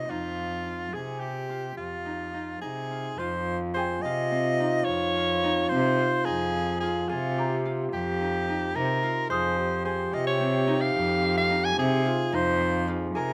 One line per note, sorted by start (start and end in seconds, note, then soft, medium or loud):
0.00 2.54 C4 medium
0.00 0.65 F4 medium
0.00 0.12 D#5 medium
0.10 0.84 F2 medium
0.10 2.05 D#4 medium
0.10 0.95 F4 medium
0.65 1.49 F4 medium
0.93 1.68 C3 medium
0.93 1.27 G#4 medium
0.93 1.21 G#4 medium
1.20 1.77 G4 medium
1.20 3.57 G4 medium
1.49 2.91 F4 medium
1.77 2.53 F2 medium
1.77 2.58 F4 medium
2.05 2.33 D#4 soft
2.33 2.61 D#4 medium
2.61 3.13 C3 medium
2.61 4.59 D#4 medium
2.61 3.20 G#4 medium
2.91 3.19 F4 medium
3.18 3.95 F2 medium
3.18 9.00 F4 loud
3.18 4.04 F4 medium
3.18 3.58 C5 loud
3.74 6.04 G#4 medium
3.74 4.03 C5 medium
3.74 4.66 G5 medium
4.02 4.79 C3 medium
4.02 5.16 F4 medium
4.02 4.86 D#5 loud
4.32 5.71 C4 medium
4.60 5.43 D#4 medium
4.84 5.62 F2 medium
4.84 5.70 C#5 loud
5.16 5.99 F4 medium
5.43 6.26 D#4 medium
5.69 5.96 C3 loud
5.69 8.71 C4 medium
5.69 6.26 C5 loud
5.99 6.82 F4 medium
6.25 7.01 F2 medium
6.25 8.20 D#4 medium
6.25 6.80 G#4 loud
6.80 7.65 F4 medium
6.80 7.11 G#4 medium
7.09 7.84 C3 medium
7.09 7.66 F4 medium
7.09 7.44 G#4 medium
7.38 9.73 G4 medium
7.38 8.27 A#5 soft
7.65 9.03 F4 medium
7.93 8.67 F2 medium
7.93 8.77 G4 medium
8.21 8.48 D#4 medium
8.48 8.75 D#4 medium
8.74 8.99 C3 medium
8.74 10.67 D#4 medium
8.74 9.29 A#4 loud
9.03 9.30 F4 medium
9.30 10.04 F2 medium
9.30 10.13 F4 medium
9.30 9.59 G#4 loud
9.30 9.81 C5 loud
9.30 10.19 D#6 medium
9.57 12.07 G4 loud
9.85 12.12 G#4 medium
9.85 10.15 C5 medium
10.12 10.86 C3 loud
10.12 11.22 F4 medium
10.12 10.26 D#5 medium
10.27 10.82 C#5 medium
10.40 11.77 C4 medium
10.67 11.49 D#4 medium
10.81 11.36 F5 loud
10.95 11.69 F2 loud
11.22 12.04 F4 medium
11.37 11.66 F5 loud
11.50 12.32 D#4 medium
11.65 11.78 G#5 loud
11.76 12.02 C3 loud
11.76 13.33 C4 medium
11.76 12.36 G#4 loud
12.05 12.87 F4 medium
12.05 12.88 F4 medium
12.32 13.07 F2 loud
12.32 13.33 D#4 medium
12.32 12.90 C5 loud
12.88 13.33 F4 medium
12.88 13.33 G#4 medium
13.15 13.33 C3 medium
13.15 13.33 G#4 medium
13.15 13.33 A#4 medium